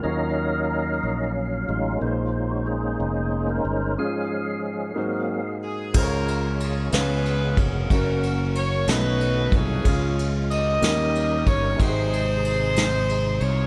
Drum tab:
CC |------|------|------|x-----|
RD |------|------|------|-xxxxx|
SD |------|------|------|---o--|
BD |------|------|------|o----o|

CC |------|------|------|
RD |xxxxxx|xxxxxx|xxxxxx|
SD |---o--|---o--|---o--|
BD |o----o|o----o|o-----|